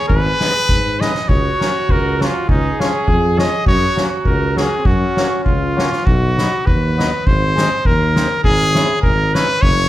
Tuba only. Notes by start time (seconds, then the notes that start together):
0.10 G#1
0.69 G#2
1.30 C#2
1.89 C#2
2.49 C#2
3.08 F2
3.67 F#2
4.25 C#2
4.85 F#2
5.46 C#2
6.07 B1
6.68 D#2
7.27 G#1
7.86 D#2
8.45 G#1
9.03 G#1
9.63 F#1